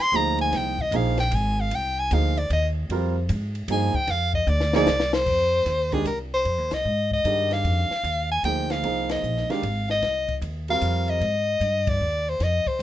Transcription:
0.02 soprano saxophone C6
0.12 upright bass D2, grand piano F3 A#3 D#4 G#4, hi-hat pedal
0.16 soprano saxophone A#5
0.39 soprano saxophone G#5, ride
0.51 upright bass C2, snare, ride
0.57 soprano saxophone G5
0.79 soprano saxophone D#5, kick
0.91 upright bass A#1, grand piano F3 A#3 D#4 G#4, hi-hat pedal, ride
0.96 soprano saxophone F5
1.18 soprano saxophone G5, snare, ride
1.31 upright bass G#1, soprano saxophone G#5, hi-hat pedal, ride
1.61 soprano saxophone F5
1.71 upright bass C2, ride
1.75 soprano saxophone G5
1.99 soprano saxophone G#5
2.11 upright bass D2, grand piano F3 A#3 D#4 G#4, soprano saxophone F5, hi-hat pedal, ride
2.37 soprano saxophone D5, ride
2.50 upright bass D#2, soprano saxophone D#5, ride
2.90 upright bass F2, grand piano G3 C4 F4 A#4, ride
3.29 upright bass G#2, hi-hat pedal, ride
3.55 ride
3.68 upright bass G2, grand piano F3 A#3 D#4 G#4, soprano saxophone G#5, hi-hat pedal, ride
3.94 soprano saxophone G5, muted upright bass stroke, kick
4.07 upright bass F2, soprano saxophone F5, snare, ride
4.34 soprano saxophone D#5, kick
4.47 upright bass D2, soprano saxophone D5, hi-hat pedal
4.60 snare
4.73 grand piano F3 A#3 D#4 G#4, soprano saxophone D5, snare
4.86 upright bass C2, snare, hi-hat pedal
5.00 snare
5.13 soprano saxophone C5, snare
5.26 upright bass F2, kick, crash
5.65 upright bass D#2, snare, hi-hat pedal, ride
5.92 grand piano D#3 G#3 D4 G4, soprano saxophone G#4, kick, ride
6.05 upright bass C2, soprano saxophone A#4, hi-hat pedal, ride
6.34 soprano saxophone C5
6.45 upright bass F2, ride
6.58 upright bass D#2
6.71 upright bass C2, soprano saxophone D#5, snare, ride
6.85 upright bass G#2
7.11 soprano saxophone D#5, kick
7.24 upright bass G2, grand piano D#3 D4 G4 G#4, hi-hat pedal, ride
7.51 soprano saxophone F5, snare, ride
7.64 upright bass F2, ride
7.90 muted upright bass stroke, snare
8.04 upright bass D#2, hi-hat pedal, ride
8.32 soprano saxophone G#5
8.43 upright bass D2, grand piano F3 A#3 D#4 G#4, soprano saxophone G5, hi-hat pedal, ride
8.70 soprano saxophone F5, snare, ride
8.83 upright bass C2, grand piano F3 A#3 D#4 G#4, ride
9.09 soprano saxophone D#5, snare, ride
9.22 upright bass A#1, hi-hat pedal
9.37 snare
9.49 grand piano D#3 G#3 D4 G4, soprano saxophone F5, muted upright bass stroke, snare, ride
9.63 upright bass G#1, ride
9.90 soprano saxophone D#5, snare
10.02 upright bass C2, snare, ride
10.28 kick, ride
10.41 upright bass D#2, hi-hat pedal, ride
10.68 grand piano G3 C4 F4 A#4, soprano saxophone F5, ride
10.81 upright bass F2, hi-hat pedal, ride
11.08 soprano saxophone D#5, ride
11.21 upright bass G#2, ride
11.61 upright bass G2, hi-hat pedal, ride
11.87 soprano saxophone D5, kick, ride
12.01 upright bass D#2
12.29 soprano saxophone C5
12.40 upright bass F2, soprano saxophone D#5, snare, ride
12.66 soprano saxophone C5, muted upright bass stroke, kick
12.79 upright bass F#2

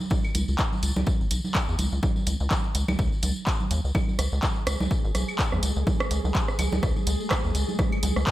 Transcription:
0.00 tambourine, high conga
0.10 kick, tambourine, low conga
0.24 tambourine, claves
0.35 analog synth bass C#2, closed hi-hat, tambourine, high conga
0.48 analog synth bass C#2, tambourine
0.59 kick, clap, tambourine
0.72 tambourine, high conga
0.83 analog synth bass C#2, closed hi-hat, tambourine
0.96 analog synth bass C#2, tambourine, low conga
1.06 kick, tambourine, high conga
1.20 analog synth bass G#1, tambourine
1.31 analog synth bass B1, closed hi-hat, tambourine
1.44 tambourine, high conga
1.55 kick, clap, tambourine, claves
1.68 analog synth bass E2, tambourine
1.78 analog synth bass C#2, closed hi-hat, tambourine, high conga
1.92 analog synth bass C#2, tambourine
2.03 kick, tambourine, low conga
2.16 tambourine, high conga
2.27 analog synth bass C#2, closed hi-hat, tambourine
2.40 analog synth bass C#2, tambourine
2.51 kick, clap, tambourine, high conga
2.64 tambourine
2.75 analog synth bass C#2, closed hi-hat, tambourine
2.88 analog synth bass C#2, tambourine, high conga, low conga, claves
2.99 analog synth bass C#2, kick, tambourine
3.12 tambourine
3.23 analog synth bass C#2, closed hi-hat, tambourine, high conga
3.36 tambourine
3.46 kick, clap, tambourine
3.60 tambourine, high conga
3.71 analog synth bass D#2, closed hi-hat, tambourine
3.84 analog synth bass C#2, tambourine
3.95 synth texture G#3 G#4, kick, tambourine, low conga, claves
4.08 tambourine, high conga
4.19 analog synth bass C#2, cross-stick, closed hi-hat, tambourine
4.32 analog synth bass C#2, tambourine
4.43 kick, clap, tambourine, high conga
4.56 tambourine
4.67 analog synth bass C#2, cross-stick, closed hi-hat, tambourine
4.80 analog synth bass C#2, tambourine, high conga, low conga
4.91 kick, tambourine
5.04 analog synth bass G#1, tambourine
5.15 analog synth bass B1, cross-stick, closed hi-hat, tambourine, high conga
5.28 tambourine, claves
5.39 kick, clap, tambourine
5.52 analog synth bass E2, cross-stick, tambourine, high conga
5.63 analog synth bass C#2, closed hi-hat, tambourine
5.76 analog synth bass C#2, tambourine
5.87 kick, tambourine, high conga, low conga
6.00 cross-stick, tambourine
6.11 analog synth bass C#2, closed hi-hat, tambourine
6.24 analog synth bass C#2, tambourine, high conga
6.35 kick, clap, tambourine
6.48 cross-stick, tambourine
6.59 analog synth bass C#2, closed hi-hat, tambourine, high conga, claves
6.72 analog synth bass C#2, tambourine, low conga
6.83 analog synth bass C#2, kick, cross-stick, tambourine
6.96 tambourine, high conga
7.07 analog synth bass C#2, closed hi-hat, tambourine
7.20 tambourine
7.30 kick, cross-stick, clap, tambourine, high conga
7.44 analog synth bass D#2, tambourine
7.55 analog synth bass C#2, closed hi-hat, tambourine
7.68 tambourine, high conga
7.79 kick, cross-stick, tambourine, low conga
7.92 tambourine, claves
8.03 analog synth bass C#2, closed hi-hat, tambourine, high conga
8.16 analog synth bass C#2, cross-stick, tambourine
8.27 kick, clap, tambourine

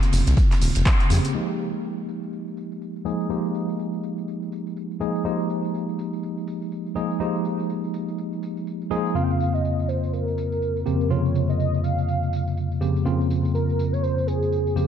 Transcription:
Already playing: tine electric piano C#3 A#3 C4 F4
0.02 snare, closed hi-hat, tambourine
0.12 analog synth bass F1, snare, open hi-hat, ride, tambourine
0.27 analog synth bass C2, snare, closed hi-hat, ride, tambourine
0.36 kick, snare, ride, tambourine
0.51 snare, clap, closed hi-hat, ride, tambourine
0.61 analog synth bass D#1, snare, open hi-hat, ride, tambourine
0.75 analog synth bass F1, snare, closed hi-hat, ride, tambourine
0.85 kick, snare, clap, ride, tambourine
1.00 closed hi-hat, tambourine
1.10 analog synth bass F2, tine electric piano C#3 A#3 C4 G4, snare, open hi-hat, ride, tambourine
1.24 snare, closed hi-hat, tambourine
1.34 tine electric piano F3 G#3 A#3 D#4 G4
1.50 tambourine
1.60 tambourine
1.74 tambourine
1.84 tambourine
1.99 tambourine
2.08 tambourine
2.23 tambourine
2.33 tambourine
2.47 tambourine
2.57 tambourine
2.72 tambourine
2.82 tambourine
2.96 tambourine
3.05 tine electric piano F3 G#3 A#3 D#4 G#4, tambourine
3.20 tambourine
3.30 tine electric piano F3 G#3 A#3 D#4 G4, tambourine
3.45 tambourine
3.55 tambourine
3.69 tambourine
3.79 tambourine
3.94 tambourine
4.03 tambourine
4.18 tambourine
4.28 tambourine
4.42 tambourine
4.52 tambourine
4.67 tambourine
4.77 tambourine
4.91 tambourine
5.00 tine electric piano F3 G#3 A#3 D#4 G#4, tambourine
5.16 tambourine
5.25 tine electric piano F3 G#3 A#3 D#4 G4, tambourine
5.40 tambourine
5.50 tambourine
5.64 tambourine
5.74 tambourine
5.89 tambourine
5.99 tambourine
6.13 tambourine
6.23 tambourine
6.38 tambourine
6.48 tambourine
6.62 tambourine
6.72 tambourine
6.86 tambourine
6.95 tine electric piano F3 G#3 A#3 D#4 G#4, tambourine
7.11 tambourine
7.20 tine electric piano F3 G#3 A#3 D#4 G4, tambourine
7.35 tambourine
7.45 tambourine
7.59 tambourine
7.69 tambourine
7.84 tambourine
7.94 tambourine
8.08 tambourine
8.18 tambourine
8.33 tambourine
8.43 tambourine
8.57 tambourine
8.67 tambourine
8.82 tambourine
8.91 tine electric piano F3 G#3 A#3 D#4 G#4, tambourine
9.06 tambourine
9.15 tine electric piano F2 C#3 A#3 C4 F4, soft synth lead F5, tambourine
9.23 soft synth lead G5
9.30 soft synth lead F5, tambourine
9.40 tambourine
9.54 soft synth lead D#5, tambourine
9.65 tambourine
9.79 tambourine
9.88 soft synth lead C5, tambourine
10.03 tambourine
10.13 soft synth lead A#4, tambourine
10.28 tambourine
10.38 tambourine
10.52 tambourine
10.62 tambourine
10.77 tambourine
10.86 tine electric piano F2 C#3 A#3 C4 G4, tambourine
11.01 tambourine
11.10 tine electric piano F2 C3 C#3 A#3 F4, soft synth lead C#5, tambourine
11.25 tambourine
11.35 tambourine
11.49 soft synth lead D#5, tambourine
11.60 tambourine
11.74 tambourine
11.83 soft synth lead F5, tambourine
11.98 tambourine
12.08 tambourine
12.23 tambourine
12.33 tambourine
12.47 tambourine
12.57 tambourine
12.72 tambourine
12.81 tine electric piano F2 C#3 A#3 C4 G4, tambourine
12.96 tambourine
13.05 tine electric piano F2 C#3 A#3 C4 F4, tambourine
13.21 tambourine
13.30 tambourine
13.45 tambourine
13.54 soft synth lead A#4, tambourine
13.69 tambourine
13.79 tambourine
13.93 soft synth lead C#5, tambourine
14.03 soft synth lead C5, tambourine
14.18 tambourine
14.27 soft synth lead G#4, tambourine
14.42 tambourine
14.52 tambourine
14.67 tambourine
14.76 tine electric piano F2 C#3 A#3 C4 G4, tambourine

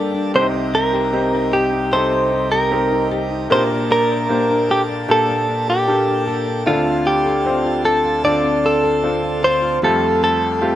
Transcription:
Already playing: upright piano G1 G2 A#3 D4 G4 A4, pipe organ G2 G3 A#3 D4 A5, nylon-string guitar G2 A#3 D4 A4
0.14 nylon-string guitar D4
0.34 upright piano C2 C3 C4 D4 G4 C5, pipe organ C2 C3 D#4 G4, nylon-string guitar C3, clean electric guitar C5
0.41 upright piano D#4
0.54 nylon-string guitar C4
0.74 nylon-string guitar D#4, clean electric guitar A#4
0.93 nylon-string guitar G4
1.13 upright piano C4 D#4 G4 C5, nylon-string guitar C4
1.33 nylon-string guitar D#4
1.53 nylon-string guitar G4, clean electric guitar G4
1.73 nylon-string guitar D#4
1.92 nylon-string guitar C3, upright piano C4 D#4 G4 A4, clean electric guitar C5
2.13 nylon-string guitar C4
2.32 nylon-string guitar D#4
2.52 nylon-string guitar G4, clean electric guitar A#4
2.71 upright piano C4 D#4 G4 A#4, nylon-string guitar C4
2.92 nylon-string guitar D#4
3.11 nylon-string guitar G4
3.31 nylon-string guitar D#4
3.50 upright piano A#1 A#2 A#3 D4 G4 A#4, nylon-string guitar A#2, pipe organ A#2 A#3 D4 A5, clean electric guitar C5
3.70 nylon-string guitar A#3
3.90 nylon-string guitar D4, clean electric guitar A#4
4.29 upright piano A#3 D4 G4 C5, nylon-string guitar A#3
4.50 nylon-string guitar D4
4.69 clean electric guitar G4, nylon-string guitar A4
4.89 nylon-string guitar D4
5.08 nylon-string guitar A#2, upright piano A#3 D4 G4 A4, clean electric guitar A4
5.28 nylon-string guitar A#3
5.48 nylon-string guitar D4
5.68 clean electric guitar G4, nylon-string guitar A4
5.87 upright piano A#3 D4 G4 A4, nylon-string guitar A#3
6.08 nylon-string guitar D4
6.27 nylon-string guitar A4
6.47 nylon-string guitar D4
6.66 upright piano D2 D3 C4 D4 F4 A4, pipe organ D2 D3 C4 F4, nylon-string guitar D3, clean electric guitar F4
6.87 nylon-string guitar C4
7.06 nylon-string guitar F4, clean electric guitar G4
7.26 nylon-string guitar A4
7.45 nylon-string guitar C4, upright piano C4 D4 F4 C5
7.65 nylon-string guitar F4
7.84 nylon-string guitar A4, clean electric guitar A4
8.04 nylon-string guitar F4
8.24 nylon-string guitar D3, upright piano C4 D4 F4 A4, clean electric guitar D5
8.43 nylon-string guitar C4
8.64 nylon-string guitar F4, clean electric guitar A4
8.83 nylon-string guitar A4
9.03 nylon-string guitar C4, upright piano C4 D4 F4 A4
9.23 nylon-string guitar F4
9.43 nylon-string guitar A4, clean electric guitar C5
9.62 nylon-string guitar F4
9.82 upright piano F1 F2 A3 C4 F4 G4, pipe organ F2 F3 G3 C4 A4, nylon-string guitar F3, clean electric guitar A4
10.22 nylon-string guitar C4, clean electric guitar A4
10.61 upright piano A3 C4 F4 G4, nylon-string guitar F4

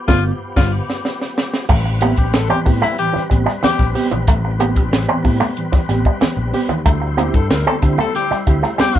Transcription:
Already playing: tonewheel organ F3 B3 G4
0.07 picked electric bass G1, reed electric piano A3 B3 F4, tenor saxophone F4, kick, snare
0.56 picked electric bass G1, reed electric piano G2 D3, tenor saxophone F4, kick, snare, crash
0.90 snare
1.05 snare
1.21 snare
1.38 snare
1.54 snare
1.69 picked electric bass A1, reed electric piano A2 E3, tonewheel organ G3 C4 B4, clean electric guitar A3, kick, crash, muted conga, low conga
1.86 muted clean electric guitar stroke, muted conga
2.01 clean electric guitar A#3, reed electric piano B3 C4 G4, tenor saxophone E4, closed hi-hat, high conga
2.16 picked electric bass A#1, tenor saxophone G4, kick, closed hi-hat
2.34 picked electric bass A1, reed electric piano C4 G4, tenor saxophone A4, snare, closed hi-hat
2.49 reed electric piano A2 E3, clean electric guitar C4, tenor saxophone G4, muted conga, high conga
2.66 picked electric bass A2, reed electric piano B3 C4 G4, muted clean electric guitar stroke, kick, open hi-hat
2.82 clean electric guitar A3, tenor saxophone E4, snare, high conga, low conga
2.98 reed electric piano A2 E3, tenor saxophone G4, closed hi-hat
3.13 clean electric guitar E3, muted picked electric bass stroke, snare
3.30 picked electric bass A1, reed electric piano B3 C4 G4, muted clean electric guitar stroke, kick, closed hi-hat
3.46 clean electric guitar G3, reed electric piano C4 G4, snare
3.63 clean electric guitar E3, tenor saxophone G4, muted picked electric bass stroke, snare, closed hi-hat, muted conga, high conga
3.79 picked electric bass A#1, kick, snare, muted conga, low conga
3.95 reed electric piano B3 C4 G4, muted clean electric guitar stroke, open hi-hat
4.11 picked electric bass A#1, clean electric guitar E3, closed hi-hat
4.27 picked electric bass A1, reed electric piano A2 E3, clean electric guitar A3, kick, closed hi-hat, muted conga, low conga
4.44 muted clean electric guitar stroke, muted conga
4.59 clean electric guitar A#3, reed electric piano B3 C4 G4, closed hi-hat, high conga
4.76 picked electric bass A#1, reed electric piano C4 G4, kick, closed hi-hat
4.91 picked electric bass A1, reed electric piano C4 G4, snare, closed hi-hat
5.08 reed electric piano A2 E3, clean electric guitar C4, muted conga, high conga
5.24 picked electric bass A2, reed electric piano B3 C4 G4, muted clean electric guitar stroke, kick, open hi-hat
5.40 clean electric guitar A3, snare, high conga, low conga
5.57 reed electric piano A2 E3, closed hi-hat
5.72 clean electric guitar E3, muted picked electric bass stroke, kick, snare, muted conga
5.89 picked electric bass A1, reed electric piano B3 C4 G4, muted clean electric guitar stroke, snare, closed hi-hat
6.05 clean electric guitar G3, reed electric piano C4 G4, kick
6.21 clean electric guitar E3, muted picked electric bass stroke, snare, closed hi-hat, high conga
6.37 picked electric bass A#1, low conga
6.53 reed electric piano B3 C4 G4, muted clean electric guitar stroke, open hi-hat
6.69 picked electric bass D#2, clean electric guitar E3, closed hi-hat
6.86 picked electric bass D2, reed electric piano D3 A3, clean electric guitar A3, tonewheel organ E4 C5, kick, closed hi-hat, low conga
7.02 muted clean electric guitar stroke
7.17 clean electric guitar A#3, reed electric piano C4 E4 G4, tenor saxophone G4, closed hi-hat, high conga
7.34 picked electric bass G2, reed electric piano E4 G4, tenor saxophone A4, kick, closed hi-hat
7.50 picked electric bass D2, reed electric piano E4 G4, tenor saxophone A#4, snare, closed hi-hat, muted conga
7.66 reed electric piano D3 A3, clean electric guitar C4, tenor saxophone A4, high conga
7.82 picked electric bass D3, reed electric piano C4 E4 G4, muted clean electric guitar stroke, kick, closed hi-hat
7.98 clean electric guitar A3, tenor saxophone A4, snare, high conga, low conga
8.14 reed electric piano D3 A3, tenor saxophone G4, closed hi-hat, muted conga
8.31 clean electric guitar G3, muted picked electric bass stroke, snare
8.46 picked electric bass D2, reed electric piano C4 E4 G4, muted clean electric guitar stroke, kick, closed hi-hat
8.63 clean electric guitar A3, reed electric piano E4 G4, snare
8.78 clean electric guitar G3, tenor saxophone G4, muted picked electric bass stroke, snare, closed hi-hat, muted conga, high conga
8.95 picked electric bass G2, kick, snare, low conga

